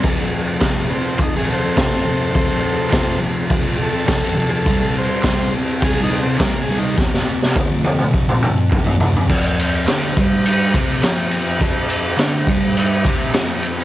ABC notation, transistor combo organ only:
X:1
M:4/4
L:1/16
Q:1/4=104
K:F
V:1 name="Transistor combo organ"
z6 [=B,C]2 _E _A [=Ac]6- | [Ac]6 z4 A4 A [_A=A]- | [_A=A]2 c4 z2 (3[G_A]2 _E2 C2 (3B,2 A2 E2 | z16 |
[K:Cdor] z16 | z16 |]